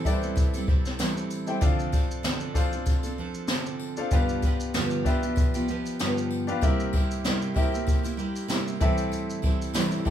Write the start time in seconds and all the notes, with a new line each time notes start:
Already playing: E4 G4 A4 C5 G5
0.05 G3 C4 E4 G4 A4 B4 D5, kick, tambourine, shaker
0.13 C5
0.22 G3 C4 E4 A4, shaker
0.36 kick, tambourine, shaker
0.54 G3 C4 E4 A4, tambourine, shaker
0.67 G3 C4 E4 A4, kick
0.85 snare, tambourine, shaker
0.99 A2 E3 G3 C4 E4 A4, snare, tambourine, shaker
1.17 shaker
1.30 tambourine, shaker
1.46 G3 C4 E4 G4 A4 C5 G5, shaker
1.61 D3 F3 C4 D4 F4 A4 C5 F5, kick, tambourine, shaker
1.79 shaker
1.92 F3 C4 D4 A4, kick, tambourine, shaker
2.11 shaker
2.23 D3 F3 C4 D4 A4, snare, tambourine, shaker
2.40 shaker
2.54 F3 C4 D4 F4 A4 C5 F5, kick, tambourine, shaker
2.73 C4 D4 A4, shaker
2.86 kick, tambourine, shaker
3.03 C4 D4 A4, tambourine, shaker
3.18 F3 C4 D4 A4
3.34 shaker
3.48 D3 F3 C4 D4 A4, snare, tambourine, shaker
3.66 shaker
3.79 tambourine
3.97 D4 F4 A4 C5 F5, shaker
4.01 C4
4.11 G2 D3 F3 B3 D4 F4 G4 B4 F5, kick, tambourine, shaker
4.29 shaker
4.42 F3 B3 F4, kick, tambourine, shaker
4.46 G4
4.60 shaker
4.74 G2 D3 F3 B3 F4 G4, snare, tambourine, shaker
4.91 shaker
5.05 F3 B3 D4 F4 G4 B4 E5, kick, tambourine, shaker
5.09 G4
5.23 F3 B3 F4 G4, shaker
5.36 kick, tambourine, shaker
5.54 F3 B3 F4 G4, tambourine, shaker
5.68 F3 B3 F4 G4, shaker
5.85 tambourine, shaker
5.99 G2 D3 F3 B3 F4 G4, snare, tambourine, shaker
6.18 shaker
6.31 tambourine
6.47 F3 B3 D4 F4 G4 B4 F5, shaker
6.61 C3 G3 A#3 C4 E4 G4 A#4 E5, kick, tambourine, shaker
6.80 shaker
6.93 G3 A#3 E4 G4, kick, tambourine
7.11 tambourine, shaker
7.24 C3 G3 A#3 E4 G4, snare, tambourine, shaker
7.42 shaker
7.54 G3 A#3 C4 E4 G4 A#4 E5, kick, tambourine
7.72 A#3 E4 G4, shaker
7.87 kick, tambourine, shaker
8.03 A#3 E4 G4, tambourine, shaker
8.17 G3 A#3 E4 G4, shaker
8.36 tambourine, shaker
8.48 C3 G3 A#3 E4 G4, snare, tambourine, shaker
8.68 shaker
8.80 A2 E3 G3 C4 E4 G4 A4 E5, kick, tambourine, shaker
8.98 tambourine, shaker
9.12 tambourine, shaker
9.30 shaker
9.42 G3 C4 E4 A4, kick, tambourine
9.62 tambourine, shaker
9.74 A2 E3 G3 C4 E4 A4, snare, tambourine, shaker
9.91 tambourine, shaker
10.05 G3 C4 E4 G4 A4, kick, tambourine